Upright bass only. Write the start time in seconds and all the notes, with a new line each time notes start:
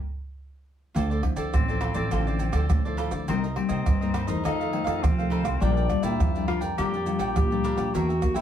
0.95 D2
1.37 D3
1.54 A1
1.95 A1
2.12 A1
2.53 D2
2.71 D3
3.12 D3
3.29 C2
3.70 C3
3.87 G2
4.28 E2
4.46 F2
4.87 F2
5.04 F3
5.44 C2
5.61 A#1
6.03 A#2
6.20 F2
6.61 F2
6.78 F2
7.19 A#1
7.37 A#2
7.77 A#2
7.95 E2
8.36 E3